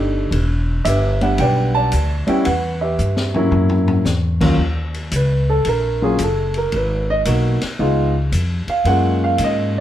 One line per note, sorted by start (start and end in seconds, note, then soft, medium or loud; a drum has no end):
0.00 0.30 G1 medium
0.00 0.32 A3 medium
0.00 0.32 D4 soft
0.00 0.33 D#4 medium
0.00 0.32 G4 medium
0.31 0.83 E1 medium
0.31 ride medium
0.85 1.37 G1 medium
0.85 1.89 G4 medium
0.85 1.40 B4 medium
0.85 1.40 E5 medium
0.85 hi-hat pedal medium
0.85 ride medium
1.21 1.89 G3 medium
1.21 1.89 B3 medium
1.21 1.89 D4 medium
1.21 1.89 F#5 medium
1.21 ride soft
1.38 1.90 B1 medium
1.38 2.43 B4 medium
1.38 1.75 D5 medium
1.38 1.73 G5 medium
1.38 ride medium
1.75 2.43 D5 medium
1.75 2.29 A5 loud
1.92 2.26 D2 medium
1.92 hi-hat pedal medium
1.92 ride medium
2.27 2.43 G3 medium
2.27 2.43 B3 medium
2.27 2.44 C#4 medium
2.27 2.43 E4 medium
2.27 2.34 G5 medium
2.27 muted upright bass stroke soft
2.27 ride soft
2.45 2.98 E2 medium
2.45 2.81 B4 medium
2.45 2.78 F#5 medium
2.45 ride medium
2.81 3.49 G4 soft
2.81 3.49 B4 medium
2.81 3.31 E5 medium
2.99 3.51 G2 medium
2.99 hi-hat pedal medium
3.17 snare soft
3.34 4.03 F#3 medium
3.34 4.03 A#3 medium
3.34 4.03 C#4 medium
3.34 4.03 E4 medium
3.34 floor tom medium
3.51 4.03 F#2 medium
3.51 floor tom medium
3.69 floor tom medium
3.88 floor tom medium
4.05 4.57 E2 medium
4.05 snare soft
4.05 hi-hat pedal medium
4.41 4.57 D#2 medium
4.41 4.57 F#3 medium
4.41 4.57 A#3 medium
4.41 4.57 C#4 medium
4.41 4.57 F4 medium
4.41 kick medium
4.41 crash medium
4.57 5.10 D#2 medium
4.94 ride soft
5.11 5.64 C#2 medium
5.11 hi-hat pedal medium
5.11 ride medium
5.16 5.49 B4 medium
5.50 5.66 A4 medium
5.65 6.17 A#1 medium
5.65 6.02 A#4 medium
5.65 ride medium
6.01 6.18 F#3 medium
6.01 6.17 A#3 medium
6.01 6.18 C#4 medium
6.01 6.18 F4 medium
6.01 6.20 G#4 medium
6.18 6.70 F#1 medium
6.18 hi-hat pedal medium
6.18 ride medium
6.23 6.56 A4 medium
6.54 6.73 A#4 medium
6.54 ride soft
6.72 7.24 G#1 medium
6.72 ride medium
6.76 7.09 B4 medium
7.10 7.20 D#5 loud
7.25 7.59 B1 medium
7.25 7.58 A#3 medium
7.25 7.58 B3 soft
7.25 7.58 D#4 soft
7.25 7.58 F#4 medium
7.25 hi-hat pedal soft
7.25 ride medium
7.61 muted upright bass stroke soft
7.61 snare soft
7.61 ride medium
7.79 8.31 C#2 medium
7.79 8.11 G#3 medium
7.79 8.11 B3 medium
7.79 8.11 D#4 medium
7.79 8.12 F4 medium
8.32 8.65 F2 medium
8.32 hi-hat pedal soft
8.32 ride medium
8.67 8.86 F5 medium
8.67 muted upright bass stroke soft
8.67 ride soft
8.84 9.37 F#2 medium
8.84 9.80 G#3 medium
8.84 9.80 A#3 medium
8.84 9.80 C#4 soft
8.84 9.80 F4 medium
8.84 9.21 F#5 medium
8.84 ride medium
9.24 9.40 F5 medium
9.38 9.80 G#2 medium
9.38 hi-hat pedal medium
9.38 ride medium
9.44 9.76 D#5 medium